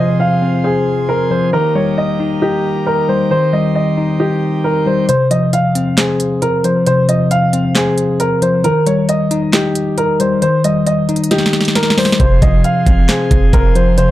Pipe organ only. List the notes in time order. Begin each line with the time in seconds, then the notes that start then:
Already playing: F3 C4 G#4
1.53 D#3 A#3 G4
3.31 C4
12.20 F3 C4 G#4